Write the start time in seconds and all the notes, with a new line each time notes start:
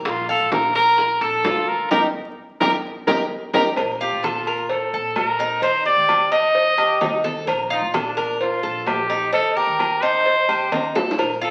Already playing: A#4
0.05 A#1 F4, high bongo, high conga, high timbale
0.29 A4 F5, high bongo, high conga
0.40 A#1
0.51 A#1 A#4, high bongo, high conga, high timbale, low timbale
0.75 A#4, high bongo, high conga, high timbale
0.98 high bongo, high conga
1.21 A#1 A4, high bongo, high conga, high timbale
1.44 D2 F4, high bongo, low bongo, high timbale, low timbale
1.68 A#4, high conga
1.91 D#2 D#4 G4 A#4, low bongo, low conga, high timbale
2.60 D#2 D#4 G4 A#4, low bongo, low conga, high timbale
3.07 D#2 D#4 G4 A#4, low bongo, low conga, high timbale
3.53 D#2 D#4 G4 A#4, low bongo, low conga, high timbale
3.76 A#2 A#4, cowbell, high conga, low agogo
4.01 F4 G4, high conga
4.12 A#2
4.23 F4 A4, cowbell, high conga, low timbale, low agogo
4.47 A#4, high conga, low agogo
4.69 A4, cowbell, high conga
4.93 A#2 A4, high conga
5.16 A#2 A#4, cowbell, high conga, low timbale, low agogo
5.39 D#4, cowbell, high conga
5.62 D#2 D#4 C5, cowbell, high conga, low agogo
5.86 G4 D5, high conga
5.97 D#3
6.09 cowbell, high conga, low timbale, low agogo
6.32 D#4 D#5, cowbell, high conga, low agogo
6.55 cowbell, high conga
6.78 D#2 G4, high conga, low agogo
7.01 C2 D#4, cowbell, high conga, low timbale, low agogo
7.24 A4, cowbell, high conga
7.47 A#1 A#4, cowbell, high conga, low agogo
7.70 D#4 F4, high conga
7.81 A#2
7.94 D4 A4, cowbell, high conga, low timbale, low agogo
8.17 A#4, high conga, low agogo
8.41 F4, cowbell, high conga
8.63 A#1 A4, high conga
8.86 A#1 G4, cowbell, high conga, low timbale, low agogo
9.10 D#4, cowbell, high conga
9.33 D#2 D#4 A4, cowbell, high conga, low agogo
9.56 G4 A#4, high conga
9.67 D#3
9.79 cowbell, high conga, low timbale, low agogo
10.02 D#4 C5, cowbell, high conga, low agogo
10.26 cowbell, high conga
10.49 D#2 G4, high conga, low agogo
10.72 D#2 D#4, cowbell, high conga, high timbale, low agogo
10.95 A4, cowbell, high bongo, low timbale
11.11 low bongo
11.18 A#1 A#4, cowbell, high conga, low agogo
11.41 F4 A4, high conga